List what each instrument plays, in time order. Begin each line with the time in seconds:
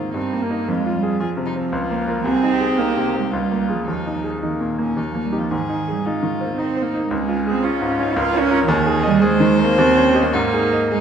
Already playing: grand piano G#2 D#3 C4 D#4 G#4, violin F4
0.03 cello A#3
0.14 grand piano G2, cello C4, violin D#4
0.33 grand piano A#3
0.42 cello A#3
0.50 grand piano D#4 A#4
0.68 grand piano F2, cello G#3, violin F4
0.86 grand piano F4
0.94 cello G3
1.03 grand piano G#4
1.20 cello F3, grand piano F4, violin G#4
1.37 grand piano C3
1.46 violin D#4
1.56 grand piano C4
1.72 grand piano C#2, violin F4
1.91 grand piano A#3
2.07 grand piano F4 A#4
2.24 grand piano C2, cello C4, violin G#4
2.43 grand piano D#4
2.52 violin G4
2.61 grand piano G#4
2.78 cello A#3, grand piano D#4
2.97 grand piano C3
3.15 grand piano C4
3.19 cello G#3
3.31 grand piano C#2, cello G3, violin F4
3.52 grand piano A#3
3.68 cello F3, grand piano F4 G#4
3.87 grand piano D#2, cello F3, violin D#4
4.06 grand piano D#4
4.24 grand piano G#4
4.42 cello D#3, violin A#3, grand piano D#4
4.61 grand piano A#2
4.78 grand piano A#3
4.83 violin C#4
4.96 grand piano D#2, violin D#4
5.11 cello F3, grand piano A#3
5.24 cello G3
5.32 grand piano D#4 G4
5.38 cello F3, violin F4
5.50 grand piano G#2, cello D#3, violin G#4
5.69 grand piano D#4
5.88 cello G3, grand piano G#4
6.04 cello G#3, grand piano D#4, violin F4
6.23 grand piano D#3
6.41 grand piano C4
6.45 cello A#3
6.56 cello C4, grand piano D#4, violin D#4
6.76 grand piano C4
6.82 cello A#3
6.94 grand piano D#4
7.08 grand piano C#2, cello G#3
7.13 violin C#4
7.28 grand piano F4
7.47 cello C4, grand piano G#4
7.63 cello C#4, grand piano F4, violin F4
7.81 grand piano G#2
7.99 grand piano C#4, cello D#4
8.14 grand piano C#2, cello F4, violin A#4
8.33 grand piano C#4
8.39 cello C#4
8.51 grand piano F4 A#4
8.67 grand piano D#2, cello D#3, violin G#4
8.86 grand piano G#4
9.03 cello G3, grand piano D#5
9.22 cello G#3, grand piano G#4, violin C5
9.40 grand piano D#3
9.59 grand piano C4
9.65 cello A#3
9.78 grand piano D#2, cello C4
9.96 grand piano C#4
10.15 grand piano G4 D#5
10.22 cello A#3
10.33 grand piano G#2, cello A#3, violin D#4
10.53 grand piano G#4
10.73 grand piano D#5
10.91 cello G#3, violin D#4, grand piano G#4